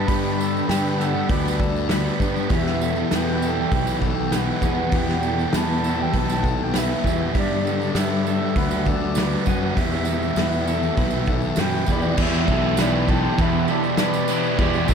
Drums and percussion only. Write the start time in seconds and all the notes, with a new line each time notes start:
0.08 kick, open hi-hat, tambourine
0.25 tambourine
0.41 tambourine
0.57 tambourine
0.69 snare, open hi-hat, tambourine
0.87 tambourine
0.99 snare, tambourine
1.30 kick, open hi-hat, tambourine
1.48 tambourine
1.60 kick, tambourine
1.76 tambourine
1.89 snare, open hi-hat, tambourine
2.07 tambourine
2.20 kick, tambourine
2.36 tambourine
2.50 kick, open hi-hat, tambourine
2.66 snare
2.81 tambourine
2.96 tambourine
3.11 snare, open hi-hat, tambourine
3.42 tambourine
3.72 kick, open hi-hat, tambourine
3.87 tambourine
4.02 kick, tambourine
4.32 snare, open hi-hat, tambourine
4.62 kick, tambourine
4.92 kick, open hi-hat, tambourine
5.09 snare
5.23 tambourine
5.39 tambourine
5.52 snare, open hi-hat, tambourine
5.84 tambourine
6.13 kick, open hi-hat, tambourine
6.29 tambourine
6.44 kick, tambourine
6.74 snare, open hi-hat, tambourine
7.04 kick, tambourine
7.35 kick, open hi-hat, tambourine
7.67 tambourine
7.81 tambourine
7.95 snare, open hi-hat, tambourine
8.27 tambourine
8.56 kick, open hi-hat, tambourine
8.71 tambourine
8.85 kick, tambourine
9.15 snare, open hi-hat, tambourine
9.46 kick, tambourine
9.76 kick, open hi-hat, tambourine
9.92 tambourine
10.05 tambourine
10.22 tambourine
10.36 snare, open hi-hat, tambourine
10.52 tambourine
10.67 tambourine
10.83 tambourine
10.97 kick, open hi-hat, tambourine
11.11 tambourine
11.26 kick, tambourine
11.42 tambourine
11.56 snare, open hi-hat, tambourine
11.71 tambourine
11.86 kick, tambourine
12.02 tambourine
12.18 kick, crash
12.33 tambourine
12.48 kick, crash
12.77 snare, tambourine, crash
13.09 kick, crash
13.38 kick, tambourine, crash
13.68 crash
13.84 tambourine
13.97 snare, tambourine, crash
14.14 tambourine
14.28 tambourine, crash
14.43 tambourine
14.59 kick, crash
14.74 tambourine
14.88 kick, tambourine, crash